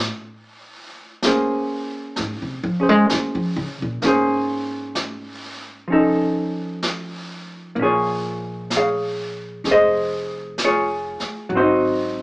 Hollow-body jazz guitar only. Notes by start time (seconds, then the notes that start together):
Already playing: A3 C#4 D#4
1.24 A#3 C#4 G#4 C5
2.80 C#4 G#4 C5
4.02 A#3 C#4 G#4
4.08 C5
5.88 F3 C#4
5.92 D#4 A4
7.75 A#3
7.80 C#4 F4 G#4 C#5
8.76 G#4 C#5 F5
9.65 C#4 G#4
9.71 G#4 C5 D#5
10.64 F4 G#4 C#5
11.49 F#3
11.55 C4 D#4 F#4 C5
11.60 D#4